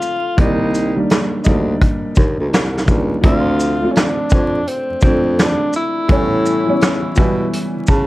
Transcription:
Already playing: upright piano F3 A3 C4 E4 F4, tenor saxophone F4
0.02 shaker
0.37 baritone saxophone C2, upright piano D#3 G3 A#3 D5, tenor saxophone D#4, kick, closed hi-hat
0.75 closed hi-hat, shaker
0.95 upright piano D#3 G3 A#3 D4
1.10 snare, closed hi-hat
1.44 baritone saxophone D2, upright piano G3 A#3 D4 D#4, kick, closed hi-hat, shaker
1.82 kick, closed hi-hat
2.16 baritone saxophone D#2, kick, shaker
2.40 baritone saxophone D2
2.53 baritone saxophone C2, snare, closed hi-hat
2.77 snare
2.85 baritone saxophone C#2, upright piano D#3 G3 A#3 D4, kick, shaker
3.21 baritone saxophone D2, upright piano F3 A3 C4, kick, closed hi-hat
3.25 upright piano D4, tenor saxophone F4
3.60 shaker
3.80 upright piano F3 A3 C4
3.84 upright piano F4
3.92 tenor saxophone C#4, closed hi-hat
3.97 tenor saxophone D4, snare
4.30 baritone saxophone F2, kick, shaker
4.67 tenor saxophone C4, closed hi-hat
4.90 baritone saxophone F2
5.01 baritone saxophone F2, upright piano F3 A3 C4, tenor saxophone C4, kick, shaker
5.05 upright piano D4
5.38 tenor saxophone D4, snare, closed hi-hat
5.73 tenor saxophone E4, shaker
6.08 baritone saxophone A2, upright piano E3 G3 B3 C#4, kick, closed hi-hat
6.46 shaker
6.66 upright piano E3 G3 B3 C#4
6.81 snare, closed hi-hat
7.16 baritone saxophone B2, upright piano E3 G3 B3 E4, kick, closed hi-hat, shaker
7.53 closed hi-hat
7.76 baritone saxophone C#3
7.87 baritone saxophone C#3, upright piano A5, kick, closed hi-hat, shaker

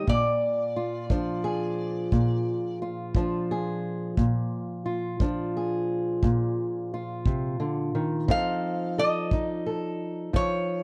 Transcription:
0.07 steel-string acoustic guitar A#2, resonator guitar played with a steel bar D5, kick
0.76 steel-string acoustic guitar F4
1.10 steel-string acoustic guitar F3 D4, kick
1.44 steel-string acoustic guitar G#4
2.12 steel-string acoustic guitar A#2, kick
2.82 steel-string acoustic guitar F4
3.15 steel-string acoustic guitar F3 D4, kick
3.51 steel-string acoustic guitar G#4
4.17 steel-string acoustic guitar A#2, kick
4.86 steel-string acoustic guitar F4
5.20 steel-string acoustic guitar F3 D4, kick
5.57 steel-string acoustic guitar G#4
6.23 steel-string acoustic guitar A#2, kick
6.94 steel-string acoustic guitar F4
7.26 steel-string acoustic guitar C3, kick
7.60 steel-string acoustic guitar D3
7.95 steel-string acoustic guitar D#3
8.28 steel-string acoustic guitar F3 C4 D#4 A4, resonator guitar played with a steel bar F5, kick
8.98 steel-string acoustic guitar A4, resonator guitar played with a steel bar D#5
9.31 steel-string acoustic guitar D#4, kick
9.66 steel-string acoustic guitar A4
10.33 steel-string acoustic guitar F3, resonator guitar played with a steel bar C#5, kick

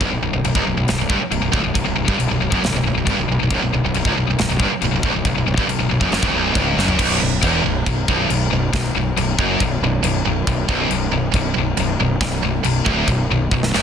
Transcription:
0.00 fingered electric bass B0, distorted electric guitar B1, kick, china
0.10 fingered electric bass B0, distorted electric guitar B1
0.21 fingered electric bass B0, distorted electric guitar B1
0.33 fingered electric bass B0, distorted electric guitar B1
0.43 fingered electric bass B0, distorted electric guitar B1, china
0.55 fingered electric bass C#1, distorted electric guitar C#2, kick
0.66 fingered electric bass B0, distorted electric guitar B1
0.77 fingered electric bass B0, distorted electric guitar B1
0.88 fingered electric bass B0, distorted electric guitar B1, snare, china
0.98 fingered electric bass B0, distorted electric guitar B1
1.09 fingered electric bass G1, distorted electric guitar G2, kick
1.20 muted distorted electric guitar stroke, muted fingered electric bass stroke
1.31 fingered electric bass B0, distorted electric guitar B1, china
1.41 fingered electric bass B0, distorted electric guitar B1
1.52 fingered electric bass D1, distorted electric guitar D2, kick
1.64 fingered electric bass B0, distorted electric guitar B1
1.74 fingered electric bass B0, distorted electric guitar B1, kick, china
1.84 fingered electric bass B0, distorted electric guitar B1
1.96 fingered electric bass B0, distorted electric guitar B1
2.06 fingered electric bass G1, distorted electric guitar G2, kick
2.17 fingered electric bass B0, distorted electric guitar B1, china
2.28 fingered electric bass B0, distorted electric guitar B1
2.40 fingered electric bass B0, distorted electric guitar B1
2.50 fingered electric bass F#1, distorted electric guitar F#2, kick
2.61 fingered electric bass B0, distorted electric guitar B1, snare, china
2.72 fingered electric bass B0, distorted electric guitar B1
2.76 distorted electric guitar B1
2.83 fingered electric bass B0, distorted electric guitar B1
2.94 fingered electric bass B0, distorted electric guitar B1
3.06 fingered electric bass G1, distorted electric guitar G2, kick, china
3.17 fingered electric bass B0, distorted electric guitar B1
3.28 fingered electric bass B0, distorted electric guitar B1
3.39 fingered electric bass B0, distorted electric guitar B1
3.50 fingered electric bass B0, distorted electric guitar B1, kick, china
3.62 fingered electric bass B0, distorted electric guitar B1
3.73 fingered electric bass B0, distorted electric guitar B1
3.83 fingered electric bass B0, distorted electric guitar B1
3.94 fingered electric bass B0, distorted electric guitar B1, china
4.05 fingered electric bass C#1, distorted electric guitar C#2, kick
4.16 fingered electric bass B0, distorted electric guitar B1
4.27 fingered electric bass B0, distorted electric guitar B1
4.38 fingered electric bass B0, distorted electric guitar B1, snare, china
4.49 fingered electric bass B0, distorted electric guitar B1
4.59 fingered electric bass G1, distorted electric guitar G2, kick
4.70 muted distorted electric guitar stroke, muted fingered electric bass stroke
4.82 fingered electric bass B0, distorted electric guitar B1, china
4.91 fingered electric bass B0, distorted electric guitar B1
5.03 fingered electric bass D1, distorted electric guitar D2, kick
5.14 fingered electric bass B0, distorted electric guitar B1
5.25 fingered electric bass B0, distorted electric guitar B1, kick, china
5.35 fingered electric bass B0, distorted electric guitar B1
5.46 fingered electric bass B0, distorted electric guitar B1
5.56 fingered electric bass G1, distorted electric guitar G2, kick
5.67 fingered electric bass B0, distorted electric guitar B1, china
5.79 fingered electric bass B0, distorted electric guitar B1
5.89 fingered electric bass B0, distorted electric guitar B1
6.00 fingered electric bass F#1, distorted electric guitar F#2, kick
6.10 fingered electric bass F#1, distorted electric guitar F#2, snare, china
6.22 fingered electric bass D1, distorted electric guitar D2, kick
6.32 fingered electric bass B0, distorted electric guitar B1
6.53 fingered electric bass C#1, distorted electric guitar C#2, kick, china
6.76 fingered electric bass F#1, distorted electric guitar F#2, snare
6.88 floor tom
6.98 fingered electric bass B0, distorted electric guitar B1, kick, crash, china
7.20 fingered electric bass B0, distorted electric guitar B1
7.41 fingered electric bass E1, distorted electric guitar E2, kick, china
7.63 fingered electric bass B0, distorted electric guitar B1
7.86 fingered electric bass B0, distorted electric guitar B1, kick, china
8.08 fingered electric bass B0, distorted electric guitar B1, kick
8.29 fingered electric bass B0, distorted electric guitar B1, china
8.50 fingered electric bass B0, distorted electric guitar B1
8.73 fingered electric bass B0, distorted electric guitar B1, kick, snare, china
8.94 fingered electric bass B0, distorted electric guitar B1
9.16 fingered electric bass B0, distorted electric guitar B1, china
9.38 fingered electric bass F#1, distorted electric guitar F#2, kick
9.60 fingered electric bass B0, distorted electric guitar B1, kick, china
9.82 fingered electric bass B0, distorted electric guitar B1
10.03 fingered electric bass B0, distorted electric guitar B1, china
10.26 fingered electric bass B0, distorted electric guitar B1
10.47 fingered electric bass B0, distorted electric guitar B1, kick, china
10.68 fingered electric bass B0, distorted electric guitar B1, kick
10.90 fingered electric bass B0, distorted electric guitar B1, china
11.12 fingered electric bass B0, distorted electric guitar B1
11.32 fingered electric bass B0, distorted electric guitar B1, kick, china
11.36 distorted electric guitar B1
11.54 fingered electric bass B0, distorted electric guitar B1
11.58 distorted electric guitar B1
11.77 fingered electric bass B0, distorted electric guitar B1, china
12.00 fingered electric bass B0, distorted electric guitar B1
12.20 fingered electric bass B0, distorted electric guitar B1, kick, snare, china
12.43 fingered electric bass B0, distorted electric guitar B1
12.64 fingered electric bass B0, distorted electric guitar B1, china
12.86 fingered electric bass D1, distorted electric guitar D2, kick
13.07 fingered electric bass B0, distorted electric guitar B1, kick, china
13.31 fingered electric bass B0, distorted electric guitar B1
13.51 fingered electric bass B0, distorted electric guitar B1, kick
13.63 snare
13.74 fingered electric bass F#1, distorted electric guitar F#2, snare

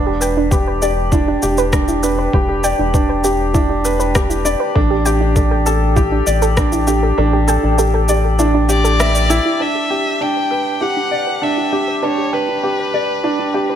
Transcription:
Already playing: analog synth bass E1, grand piano D4
0.06 synth arpeggio sound G4
0.21 grand piano B4, synth arpeggio sound G5, shaker
0.37 synth arpeggio sound D4
0.51 grand piano G4, synth arpeggio sound B4, kick, shaker
0.67 synth arpeggio sound B4
0.82 synth arpeggio sound G4, grand piano D5, shaker
1.12 grand piano D4, synth arpeggio sound E4, kick, shaker
1.28 synth arpeggio sound D4
1.43 analog synth bass E1, grand piano G4, shaker
1.58 synth arpeggio sound B4, shaker
1.73 grand piano D4, kick, cross-stick, shaker
1.88 synth arpeggio sound E4, shaker
2.03 synth arpeggio sound D4, grand piano B4, shaker
2.18 synth arpeggio sound B4
2.33 analog synth bass E1, grand piano G4, synth arpeggio sound B4, kick
2.49 synth arpeggio sound G4
2.64 grand piano D5, synth arpeggio sound G5, shaker
2.79 analog synth bass E1, synth arpeggio sound D4
2.94 grand piano D4, synth arpeggio sound B4, kick, shaker
3.09 synth arpeggio sound B4
3.24 synth arpeggio sound G4, grand piano G4, shaker
3.54 grand piano D4, synth arpeggio sound E4, kick, shaker
3.69 synth arpeggio sound D4
3.85 grand piano B4, shaker
4.00 synth arpeggio sound B4, shaker
4.15 grand piano G4, kick, cross-stick, shaker
4.30 synth arpeggio sound E4, shaker
4.45 synth arpeggio sound D4, grand piano D5, shaker
4.60 synth arpeggio sound B4
4.75 analog synth bass A1, grand piano D4, synth arpeggio sound A4, kick
4.90 synth arpeggio sound G4
5.05 grand piano G4, synth arpeggio sound G5, shaker
5.21 synth arpeggio sound D4
5.36 grand piano D4, synth arpeggio sound A4, kick, shaker
5.51 synth arpeggio sound A4
5.66 synth arpeggio sound G4, grand piano A4, shaker
5.96 synth arpeggio sound E4, grand piano G4, kick, shaker
6.12 synth arpeggio sound D4
6.27 analog synth bass A1, grand piano D5, shaker
6.42 synth arpeggio sound A4, shaker
6.57 grand piano D4, kick, cross-stick, shaker
6.72 synth arpeggio sound E4, shaker
6.87 synth arpeggio sound D4, grand piano G4, shaker
7.03 synth arpeggio sound A4
7.18 analog synth bass A1, grand piano D4, synth arpeggio sound A4
7.33 synth arpeggio sound G4
7.48 grand piano A4, synth arpeggio sound G5, shaker
7.63 analog synth bass A1, synth arpeggio sound D4
7.78 grand piano G4, synth arpeggio sound A4, shaker
7.94 synth arpeggio sound A4
8.09 synth arpeggio sound G4, grand piano D5, shaker
8.39 grand piano D4, synth arpeggio sound E4, shaker
8.54 synth arpeggio sound D4
8.69 grand piano G4, violin D5, shaker
8.84 synth arpeggio sound A4, shaker
9.00 grand piano E5, cross-stick, shaker
9.15 synth arpeggio sound D5, shaker
9.30 grand piano E4, synth arpeggio sound G5, shaker
9.45 synth arpeggio sound E4
9.60 grand piano D4, synth arpeggio sound B4, violin E5
9.75 synth arpeggio sound G4
9.90 grand piano G4, synth arpeggio sound G5
10.06 synth arpeggio sound D4
10.21 grand piano D4, synth arpeggio sound B4, violin G5
10.36 synth arpeggio sound B4
10.51 synth arpeggio sound G4, grand piano B4
10.81 synth arpeggio sound E4, grand piano G4, violin F#5
10.97 synth arpeggio sound D4
11.11 grand piano D5
11.27 synth arpeggio sound B4
11.42 grand piano D4, violin E5
11.57 synth arpeggio sound E4
11.72 synth arpeggio sound D4, grand piano G4
11.88 synth arpeggio sound B4
12.03 grand piano D4, synth arpeggio sound B4, violin C#5
12.18 synth arpeggio sound G4
12.33 grand piano B4, violin B4, synth arpeggio sound G5
12.49 synth arpeggio sound D4
12.63 grand piano G4, synth arpeggio sound B4
12.79 synth arpeggio sound B4
12.94 synth arpeggio sound G4, grand piano D5
13.24 grand piano D4, synth arpeggio sound E4
13.39 synth arpeggio sound D4
13.54 grand piano G4
13.70 synth arpeggio sound B4

